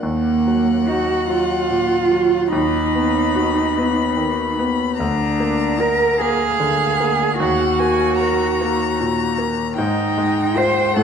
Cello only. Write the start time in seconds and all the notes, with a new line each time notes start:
0.03 A#3
0.88 F#4
1.31 F4
2.54 D#4
5.01 D4
5.81 A#4
6.21 G#4
7.40 F#4
9.78 D#4
10.57 C5
10.97 A4